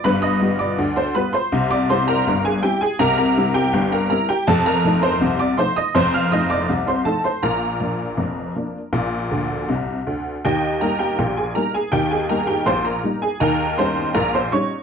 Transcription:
X:1
M:2/4
L:1/16
Q:1/4=81
K:Eb
V:1 name="Honky-tonk piano"
[=B=b] [ee']2 [dd']2 [cc'] [Bb] [cc']- | [cc'] [dd'] [cc'] [Bb]2 [Aa] [Gg] [Aa] | [Bb] [Bb]2 [Gg]2 [Bb] [Bb] [Gg] | [=A=a] [Bb]2 [cc']2 [dd'] [cc'] [ee'] |
[cc'] [ff'] [ee'] [dd']2 [cc'] [=A=a] [cc'] | [Bb]8- | [Bb]4 z4 | [Geg]2 [Bb] [Gg]2 [Aa] [Bb] [Aa] |
[Gg] [Aa] [Bb] [Gg] [cc'] [Bb]2 [Aa] | [Bgb]2 [cc']2 [Bb] [cc'] [_d_d']2 |]
V:2 name="Honky-tonk piano" clef=bass
[G,,,G,,]2 [G,=B,F]2 [D,,D,]2 [G,B,F]2 | [C,,C,]2 [G,C=E]2 [G,,,G,,]2 [G,CE]2 | [C,,C,]2 [G,C=E]2 [G,,,G,,]2 [G,CE]2 | [F,,,F,,]2 [F,=A,E]2 [C,,C,]2 [F,A,E]2 |
[F,,,F,,]2 [F,=A,E]2 [C,,C,]2 [F,A,E]2 | [B,,,B,,]2 [F,B,D]2 [F,,,F,,]2 [F,B,D]2 | [B,,,B,,]2 [D,,D,]2 [C,,C,]2 [D,,D,]2 | [E,,E,]2 [G,B,E]2 [B,,,B,,]2 [G,B,E]2 |
[E,,E,]2 [G,B,E]2 [B,,,B,,]2 [G,B,E]2 | [E,,E,]2 [G,_DE]2 [B,,,B,,]2 [G,DE]2 |]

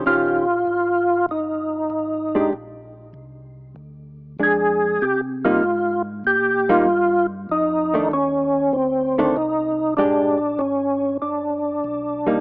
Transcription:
X:1
M:4/4
L:1/8
Q:"Swing" 1/4=97
K:Bbmix
V:1 name="Tonewheel organ"
F4 E4 | z6 A2 | G F2 z G F2 z | E2 _D2 C2 E2 |
D2 _D2 =D4 |]
V:2 name="Hollow-body jazz guitar"
[E,_DGc] z6 [A,=DG] | z6 [A,D]2 | z [G,B,E] z3 [G,B,E] z2 | z [E,=A,D] z3 [E,A,D] z2 |
[A,DG] z6 [G,B,E] |]
V:3 name="Tonewheel organ" clef=bass
B,,,2 A,,,2 G,,,2 A,,,2 | B,,,2 C,,2 D,,2 F,,2 | C,2 A,,2 B,,2 G,,2 | F,,2 E,,2 D,,2 C,,2 |
B,,,2 A,,,2 G,,,2 =B,,,2 |]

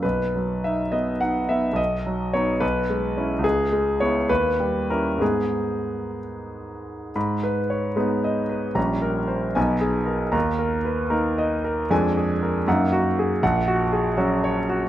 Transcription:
X:1
M:6/8
L:1/8
Q:3/8=74
K:B
V:1 name="Grand piano"
B2 e d f e | d2 c B3 | [K:G#m] G2 c B2 A | G3 z3 |
b B c B d B | _b _B ^B g G A | a A B A d A | _a _A ^A f F G |
[K:F#mix] f F G F c F |]
V:2 name="Grand piano"
B,,, F, D B, D B, | B,,, F, [B,D] B,,, G, [CE] | [K:G#m] C,, G, [B,E] D,, =G, [CE] | [G,,G,B,D]6 |
G,,3 [G,B,D]3 | [_B,,,=G,_D]3 [=B,,,B,^D]3 | D,,3 [A,D]3 | [=F,,_A,=D]3 [^F,,^A,^D]3 |
[K:F#mix] A,,,3 [F,C]3 |]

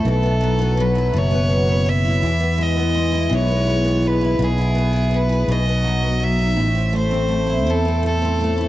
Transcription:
X:1
M:6/8
L:1/16
Q:3/8=55
K:E
V:1 name="Violin"
A4 B2 c4 e2- | e2 d4 c4 B2 | G4 B2 d4 e2- | e2 =c4 A2 A4 |]
V:2 name="Steel-string acoustic guitar"
B,, B, F, B, F, E B,, B, F, B, F, E | E, B, G, B, G, E E, B, G, B, G, E | B,, E B, E B, G B,, B, F, B, F, D | A,, =C A, C A, E A,, C A, C A, E |]
V:3 name="Fretless electric bass" clef=bass
B,,,6 F,,,6 | E,,6 B,,,6 | B,,,6 B,,,6 | A,,,6 E,,6 |]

